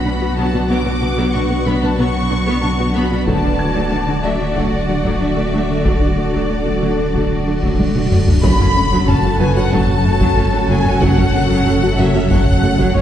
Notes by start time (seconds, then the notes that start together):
Already playing: B1 F#3 D4 F#4 B4 F#5 B5
0.05 B2 B3 D4
0.21 B2 B3 F#4
0.36 B2 F#3 B3 A5
0.53 B2 B3 D4 F#4
0.69 B2 F#3 B3 D6
0.85 B2 B3 D4 B4
1.01 B2 B3 F#4
1.17 B2 F#3 B3
1.33 B2 B3 D4 F#4 C#6
1.50 B2 B3 B4
1.65 B2 F#3 B3 B4 B5
1.81 B2 B3 D4 B4 A5
1.98 B2 F#3 B3 C#6
2.30 B2 B3 D4
2.46 B2 F#3 B3
2.61 B2 B3 D4 A5
2.78 B2 B3 F#4
2.95 B2 F#3 B3 B5
3.11 B2 B3 D4 F#4
3.26 D1 D3 F#3 A3 D4 F#4 A4 D5 A5, taiko
3.43 D3 A3 D4
3.59 D3 A3 G#6
3.75 D3 F#3 A3
3.91 D3 A3 D4
4.07 D3 A3 D4
4.23 D3 F#3 A3 D5 E5
4.39 D3 A3 D4
4.55 D3 F#3 A3 F#5, taiko
4.88 D3 F#3 A3
5.05 D3 F#3 A3, taiko
5.20 D3 F#3 A3 D4 E5
5.36 D3 A3
5.53 D3 F#3 A3
5.69 D3 A3 D4
5.85 D3 F#3 A3 D5, taiko, cymbal swell
6.02 D3 A3 D4
6.17 D3 A3
6.33 D3 F#3 A3
6.49 D3 A3 D4
6.66 D3 A3 D4
6.82 D3 F#3 A3
6.98 D3 A3 D4
7.14 D3 F#3 A3, taiko
7.47 D3 F#3 A3
7.63 D3 F#3 A3, taiko
7.79 D3 F#3 A3 D4, taiko high
7.95 D3 A3, taiko mid
8.11 D3 F#3 A3, taiko low-mid
8.27 D3 A3 D4, taiko low
8.43 F#1 F#2 F#3 C#4 F#4 A4 B5, taiko, impact
8.59 F#2 C#4 F#4, taiko low-mid
8.76 F#1 F#2 A3 C#4
8.92 F#2 F#3
9.07 F#1 F#2 C#4 A5, taiko low-mid
9.24 F#2 A3 F#4
9.39 F#1 F#2 F#3 B4 G#5
9.55 F#2 C#4 F#4 F#5
9.71 F#1 F#2 F#3 A5, taiko
9.88 taiko low-mid
10.05 F#1 F#2 A3
10.20 F#2 F#3, taiko
10.36 F#1 F#2 A3 C#4
10.52 F#2 A3 C#4
10.68 F#1 F#2 F#3 G#5
10.84 F#2 C#4, taiko low-mid
11.01 F#1 F#2 F#3 F#5, taiko
11.17 F#2 C#4 F#4, taiko low-mid
11.34 F#1 F#2 A3 C#4
11.49 F#2 F#3
11.66 F#1 F#2 C#4, taiko low-mid
11.82 F#2 A3 F#4
11.98 F#1 F#2 F#3 E5
12.15 F#2 C#4 F#4
12.30 F#1 F#2 F#3 F#5, taiko
12.47 taiko low-mid
12.63 F#1 F#2 A3
12.79 F#2 F#3, taiko
12.94 F#1 F#2 A3 C#4 C#5